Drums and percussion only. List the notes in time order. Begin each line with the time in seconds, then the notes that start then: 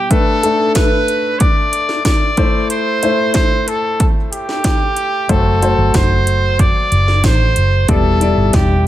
0.11 kick, closed hi-hat
0.43 closed hi-hat
0.75 kick, snare, closed hi-hat
1.08 closed hi-hat
1.40 kick, closed hi-hat
1.73 closed hi-hat
1.89 snare
2.05 kick, snare, closed hi-hat
2.37 kick, closed hi-hat
2.70 closed hi-hat
3.03 closed hi-hat
3.34 kick, snare, closed hi-hat
3.68 closed hi-hat
4.00 kick, closed hi-hat
4.33 closed hi-hat
4.49 snare
4.64 kick, snare, closed hi-hat
4.96 closed hi-hat
5.29 kick, closed hi-hat
5.62 closed hi-hat
5.94 kick, snare, closed hi-hat
6.27 closed hi-hat
6.59 kick, closed hi-hat
6.92 closed hi-hat
7.08 snare
7.24 kick, snare, closed hi-hat
7.56 closed hi-hat
7.88 kick, closed hi-hat
8.21 closed hi-hat
8.53 kick, snare, closed hi-hat